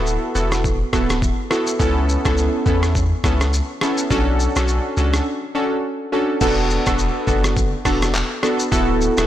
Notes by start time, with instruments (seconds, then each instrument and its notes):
Already playing: sub bass D1, synth keys B3 E4 F#4 A4
0.06 shaker
0.35 sub bass E1, synth keys B3 E4 F#4 A4, shaker
0.52 cross-stick, shaker
0.64 kick, shaker
0.93 sub bass D1, synth keys B3 E4 F#4 A4, kick, cross-stick, shaker
1.10 cross-stick, shaker
1.22 kick, shaker
1.50 synth keys B3 E4 F#4 A4, cross-stick, shaker
1.67 shaker
1.79 sub bass C#2, synth keys B3 C#4 E4 A4, kick, shaker
2.09 shaker
2.25 sub bass C#2, synth keys B3 C#4 E4 A4, kick, cross-stick, shaker
2.37 shaker
2.66 sub bass E2, synth keys B3 C#4 E4 A4, kick, shaker
2.83 cross-stick, shaker
2.95 kick, shaker
3.24 sub bass C#2, synth keys B3 C#4 E4 A4, kick, cross-stick, shaker
3.41 cross-stick, shaker
3.53 shaker
3.81 synth keys B3 C#4 E4 A4, cross-stick, shaker
3.98 shaker
4.10 sub bass B1, synth keys C#4 D4 F#4 A4, kick, shaker
4.40 shaker
4.56 sub bass B1, synth keys C#4 D4 F#4 A4, cross-stick, shaker
4.68 shaker
4.97 sub bass C#2, synth keys C#4 D4 F#4 A4, shaker
5.13 cross-stick, shaker
5.55 synth keys C#4 D4 F#4 A4
6.12 synth keys C#4 D4 F#4 A4
6.41 sub bass E1, synth keys B3 D4 F#4 A4, kick, crash, shaker
6.70 shaker
6.86 sub bass E1, synth keys B3 D4 F#4 A4, kick, cross-stick, shaker
6.98 shaker
7.27 sub bass F#1, synth keys B3 D4 F#4 A4, kick, shaker
7.44 cross-stick, shaker
7.57 kick, shaker
7.85 sub bass E1, synth keys B3 D4 F#4 A4, kick, cross-stick, open hi-hat, shaker
8.02 cross-stick, shaker
8.14 clap, shaker
8.43 synth keys B3 D4 F#4 A4, cross-stick, shaker
8.59 shaker
8.72 sub bass D1, synth keys B3 E4 F#4 A4, kick, shaker
9.01 shaker
9.17 sub bass D1, synth keys B3 E4 F#4 A4, cross-stick, shaker